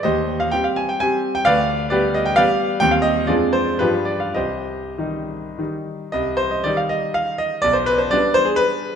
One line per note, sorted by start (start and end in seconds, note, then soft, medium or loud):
0.03 0.52 D#2 medium
0.03 0.37 G4 medium
0.03 0.37 C5 medium
0.03 0.39 D#5 loud
0.40 0.52 F5 medium
0.51 0.98 G3 medium
0.51 0.98 C4 medium
0.51 0.98 G4 medium
0.51 0.65 G5 loud
0.64 0.77 F5 medium
0.76 0.89 G#5 medium
0.89 1.01 G5 medium
1.00 1.42 G3 medium
1.00 1.43 C4 medium
1.00 1.43 G4 medium
1.00 1.35 G#5 loud
1.35 1.46 G5 loud
1.45 1.91 D2 medium
1.45 1.89 B4 medium
1.45 1.89 D5 loud
1.45 1.91 F5 loud
1.90 2.34 G3 medium
1.90 2.35 B3 medium
1.90 2.14 G4 medium
1.90 2.14 B4 medium
1.90 2.15 D5 medium
2.14 2.26 D#5 medium
2.26 2.37 G5 loud
2.36 2.78 G3 medium
2.36 2.78 B3 medium
2.36 2.78 G4 medium
2.36 2.78 B4 medium
2.36 2.78 D5 medium
2.36 2.81 F5 loud
2.80 3.28 D#2 medium
2.80 3.25 G3 medium
2.80 3.25 C4 medium
2.80 3.26 G4 medium
2.80 2.92 G5 loud
2.91 3.04 F5 medium
3.02 3.28 D#5 loud
3.27 3.79 F2 medium
3.27 3.76 G#3 medium
3.27 3.76 C4 medium
3.27 3.77 D4 soft
3.27 3.53 F4 medium
3.27 3.53 G#4 medium
3.27 3.54 D5 medium
3.53 3.79 C5 loud
3.79 4.34 G2 medium
3.79 4.32 F3 medium
3.79 4.32 G3 soft
3.79 4.32 D4 soft
3.79 4.05 F4 medium
3.79 4.05 G4 medium
3.79 4.06 B4 medium
4.05 4.20 D5 medium
4.20 4.35 F5 medium
4.34 4.96 C2 medium
4.34 5.55 G4 medium
4.34 5.55 C5 medium
4.34 5.59 D#5 medium
4.98 5.55 D#3 soft
4.98 5.56 G3 medium
4.98 5.56 D#4 medium
5.59 6.10 D#3 soft
5.59 6.10 G3 soft
5.59 6.11 D#4 soft
6.12 6.64 C2 medium
6.12 6.38 D#5 medium
6.37 6.51 C5 loud
6.51 6.65 D#5 medium
6.64 7.59 D#3 medium
6.64 7.60 G3 medium
6.64 7.60 D#4 medium
6.64 6.78 D5 loud
6.77 6.91 F5 medium
6.89 7.15 D#5 medium
7.14 7.39 F5 loud
7.38 7.63 D#5 loud
7.62 8.11 B1 medium
7.62 7.75 D5 loud
7.73 7.86 C5 medium
7.86 7.99 B4 loud
7.98 8.11 C5 medium
8.11 8.95 G3 medium
8.11 8.95 B3 medium
8.11 8.95 D4 medium
8.11 8.35 D5 loud
8.34 8.46 C5 loud
8.45 8.57 G#4 medium
8.56 8.95 B4 loud